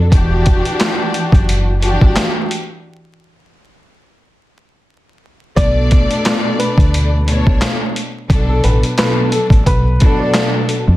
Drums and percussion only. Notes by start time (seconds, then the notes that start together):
0.12 kick, closed hi-hat
0.46 kick, closed hi-hat
0.65 closed hi-hat
0.80 snare, clap, closed hi-hat
1.14 closed hi-hat
1.32 kick, closed hi-hat
1.49 closed hi-hat
1.83 closed hi-hat
2.01 kick
2.16 snare, clap, closed hi-hat
2.51 closed hi-hat
5.57 kick, closed hi-hat
5.91 kick, closed hi-hat
6.11 closed hi-hat
6.25 snare, clap, closed hi-hat
6.60 closed hi-hat
6.78 kick, closed hi-hat
6.94 closed hi-hat
7.28 closed hi-hat
7.47 kick
7.62 snare, clap, closed hi-hat
7.96 closed hi-hat
8.30 kick, closed hi-hat
8.64 closed hi-hat
8.83 closed hi-hat
8.98 snare, clap, closed hi-hat
9.32 closed hi-hat
9.50 kick, closed hi-hat
9.66 kick, closed hi-hat
10.00 kick, closed hi-hat
10.34 snare, clap, closed hi-hat
10.69 closed hi-hat